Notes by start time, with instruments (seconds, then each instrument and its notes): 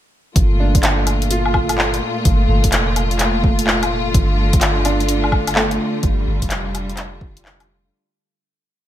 0.36 808-style bass G1, string section A#2 A3 F4, kick, closed hi-hat
0.60 upright piano D4
0.75 kick, closed hi-hat
0.83 clap, closed hi-hat
1.07 closed hi-hat, low woodblock
1.22 closed hi-hat
1.31 upright piano F4, closed hi-hat
1.46 low woodblock
1.54 kick, low woodblock
1.69 closed hi-hat, low woodblock
1.78 clap
1.94 closed hi-hat
2.25 808-style bass G1, kick, closed hi-hat
2.48 808-style bass G1
2.64 808-style bass F1, kick, closed hi-hat
2.72 clap, closed hi-hat
2.96 closed hi-hat, low woodblock
3.11 closed hi-hat
3.19 clap, closed hi-hat
3.44 kick
3.59 closed hi-hat
3.67 clap
3.83 closed hi-hat, low woodblock
4.14 808-style bass G1, string section D3, kick, closed hi-hat
4.53 kick, closed hi-hat
4.61 clap, closed hi-hat
4.85 upright piano D4, closed hi-hat, low woodblock
5.00 closed hi-hat
5.09 closed hi-hat
5.24 low woodblock
5.32 kick, low woodblock
5.47 closed hi-hat, low woodblock
5.56 upright piano A3, clap
5.71 closed hi-hat
6.03 808-style bass G1, string section G3, kick, closed hi-hat
6.27 808-style bass G1
6.42 808-style bass F1, kick, closed hi-hat
6.50 clap, closed hi-hat
6.75 closed hi-hat, low woodblock
6.90 closed hi-hat
6.97 clap, closed hi-hat
7.21 kick
7.37 closed hi-hat
7.45 clap
7.60 closed hi-hat, low woodblock